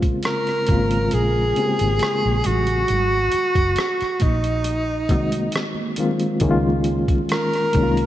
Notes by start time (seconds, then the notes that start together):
Already playing: A#1 C#3 G#3 A#3 C4 F4
0.02 kick, closed hi-hat
0.23 A#4, cross-stick, closed hi-hat
0.47 cross-stick, closed hi-hat
0.67 G#1 C#3 G#3 A#3 C4, kick, closed hi-hat, high conga
0.71 F4
0.91 closed hi-hat
1.11 A#1 G#4, closed hi-hat, muted conga
1.56 C#3 G#3 A#3 C4 G4, closed hi-hat
1.66 G#4
1.79 G#1, closed hi-hat, high conga
1.99 cross-stick, closed hi-hat
2.22 A#1, high conga
2.44 A1 F#4, closed hi-hat, muted conga, low conga
2.67 closed hi-hat
2.88 G#1, closed hi-hat, muted conga, low conga
3.32 muted fingered electric bass stroke, closed hi-hat
3.55 F#1, kick, closed hi-hat
3.75 cross-stick, closed hi-hat, muted conga
4.01 muted fingered electric bass stroke, cross-stick, closed hi-hat
4.20 A#1 D#4, kick, closed hi-hat, muted conga, high conga
4.44 closed hi-hat
4.64 closed hi-hat, muted conga
5.08 C2 D#3 G#3 A#3 C4 F#4, kick, closed hi-hat, muted conga
5.32 closed hi-hat, high conga
5.52 cross-stick, closed hi-hat, muted conga
5.74 high conga
5.96 D#3 G#3 A#3 C4 F4, closed hi-hat, muted conga, low conga
6.20 closed hi-hat
6.40 C#2 D#3 G#3 A#3 C#4, kick, closed hi-hat, low conga
6.44 E4
6.51 F4
6.84 closed hi-hat, muted conga
7.08 kick, closed hi-hat
7.29 A#4, cross-stick, closed hi-hat
7.53 cross-stick, closed hi-hat
7.73 C2 D#3 G#3 A#3 C#4 D#4, kick, closed hi-hat, muted conga, high conga
7.83 F4
7.97 closed hi-hat